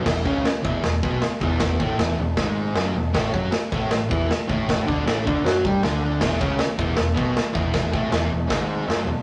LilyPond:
<<
  \new Staff \with { instrumentName = "Distorted electric guitar" } { \clef bass \time 4/4 \key e \mixolydian \tempo 4 = 156 <e, e>8 <cis cis'>8 r8 <e, e>8 e,8 <b, b>8 r8 <e, e>8~ | <e, e>8 <a, a>8 <e, e>8 e,8 <gis, gis>4 <fis, fis>8 e,8 | <a, a>8 <fis fis'>8 r8 <a, a>8 a,8 <e e'>8 r8 <a, a>8~ | <a, a>8 <d d'>8 <a, a>8 <d d'>8 <fis fis'>8 <g g'>8 <d d'>4 |
<e, e>8 <cis cis'>8 r8 <e, e>8 e,8 <b, b>8 r8 <e, e>8~ | <e, e>8 <a, a>8 <e, e>8 e,8 <gis, gis>4 <fis, fis>8 e,8 | }
  \new Staff \with { instrumentName = "Picked electric bass" } { \clef bass \time 4/4 \key e \mixolydian e,,8 cis,8 r8 e,,8 e,,8 b,,8 r8 e,,8~ | e,,8 a,,8 e,,8 e,,8 gis,,4 fis,,8 e,,8 | a,,8 fis,8 r8 a,,8 a,,8 e,8 r8 a,,8~ | a,,8 d,8 a,,8 d,8 fis,8 g,8 d,4 |
e,,8 cis,8 r8 e,,8 e,,8 b,,8 r8 e,,8~ | e,,8 a,,8 e,,8 e,,8 gis,,4 fis,,8 e,,8 | }
  \new DrumStaff \with { instrumentName = "Drums" } \drummode { \time 4/4 <cymc bd sn>8 bd8 <hho sn>8 bd8 <hho sn>8 bd8 <hho sn>8 bd8 | <hho bd sn>8 bd8 <hho sn>4 <hho bd sn>4 <hho sn>4 | <hho bd sn>8 bd8 <hho sn>8 bd8 <hho sn>8 bd8 <hho sn>8 bd8 | <hho bd sn>8 bd8 <hho sn>8 bd8 <hho sn>8 bd8 <hho sn>4 |
<cymc bd sn>8 bd8 <hho sn>8 bd8 <hho sn>8 bd8 <hho sn>8 bd8 | <hho bd sn>8 bd8 <hho sn>4 <hho bd sn>4 <hho sn>4 | }
>>